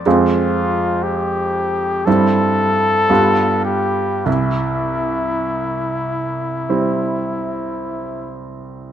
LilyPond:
<<
  \new Staff \with { instrumentName = "Trumpet" } { \time 4/4 \key c \major \tempo 4 = 53 f'4 g'4 a'4. g'8 | e'2.~ e'8 r8 | }
  \new Staff \with { instrumentName = "Grand piano" } { \time 4/4 \key c \major <f, aes c' f'>2 <g, g c' e'>4 <g, g b f'>4 | c,2 <g c' e'>2 | }
>>